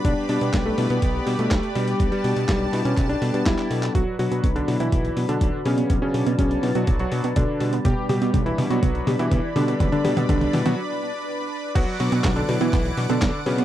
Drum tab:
CC |----------------|----------------|----------------|----------------|
HH |x-oxx-oxx-oxxxox|xxoxx-oxxxoxxxox|x-oxxxoxxxoxx-ox|x-oxxxoxxxoxx-ox|
CP |----x-------x---|----x---x---xx-x|----------------|----------------|
SD |----o-------o---|----o-------o---|----------------|----------------|
T2 |----------------|----------------|o---o---o---o---|o---o---o---o---|
BD |o---o---o---o---|o---o---o---o---|o---o---o---o---|o---o---o---o---|

CC |----------------|----------------|x---------------|
HH |x-oxxxoxxxoxx-ox|xxoxxxox--------|x-oxxxoxxxoxx-ox|
CP |----------------|----------------|----x---x---x---|
SD |----------------|----------------|----o-------o---|
T2 |o-o-o-o-o-o-o-o-|oooooooo--------|----------------|
BD |o---o---o---o---|o---o-----------|o---o---o---o---|